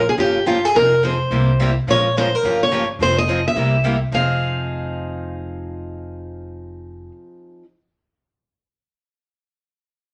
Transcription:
0.09 G#4
0.18 G1 C#3 F3 A#3 F4 G4
0.46 C#3 F3 A#3 F4 G4
0.65 G#4
0.75 F1 F3 C4 D#4 G#4 A#4
1.03 F3 C4 D#4 G#4 C5
1.31 C2 C3 G3 A#3 E4 G4
1.60 C3 G3 A#3 E4 G4
1.87 A#1 F3 G#3 C#4 F4 A#4 C#5
2.17 F3 G#3 C#4 F4 A#4 C5
2.35 A#4
2.43 G1 C#3 F3 A#3 F4 G4
2.63 C#5
2.71 C#3 F3 A#3 F4 G4
2.99 F1 F3 C4 D#4 G#4 C5
3.18 D#5
3.29 F3 C4 D#4 G#4
3.48 E5
3.55 C2 C3 G3 A#3 E4 G4
3.84 C3 G3 A#3 E4 G4
4.12 F1 F3 C4 D#4 G#4 F5

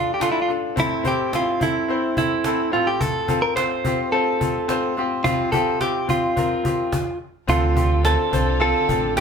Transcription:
Already playing: D2 D3 D4 F4 A4
0.14 G4
0.20 D4 F4 A4, cajon slap
0.32 E4
0.42 F4
0.48 D4 F4 A4, cajon slap
0.76 A1 A2 C4 E4 A4, cajon bass
1.04 C4 E4 C5, cajon bass
1.08 G4
1.32 C4 E4 F4 G4, cajon slap
1.60 C4 E4 A4, cajon bass
1.88 C4 E4 C5, cajon slap
2.17 C4 E4 A4, cajon bass
2.44 C4 E4 A4, cajon slap
2.72 A1 A2 C4 F4 A4, cajon slap
2.87 G4
3.01 A4, cajon bass
3.28 C4 F4 A4, cajon bass
3.42 A#4
3.56 C4 F4 A4 C5, cajon slap
3.84 C4 F4 G4, cajon bass
4.12 C4 F4 A4 C5, cajon slap
4.40 C4 F4 A4, cajon bass
4.68 C4 F4 C5, cajon slap
4.97 C4 F4 G4, cajon slap
5.24 C2 C3 C4 F4 G4, cajon bass
5.52 C4 F4 G4 A4, cajon bass
5.80 C4 F4 G4, cajon slap
6.08 C4 F4 G4, cajon bass
6.36 C4 F4 A#4, cajon bass
6.64 C4 F4 G4, cajon bass
6.92 cajon bass, cajon slap
7.47 D2 D3 C4 D4 F4 A4, cajon bass
7.75 C4 F4 G4, cajon bass
8.03 C4 F4 A4 C5, cajon slap
8.32 C2 C4 F4 C5, cajon bass
8.60 C4 F4 A4, cajon slap
8.88 A1 C4 F4 A4, cajon bass
9.17 C4, cajon slap

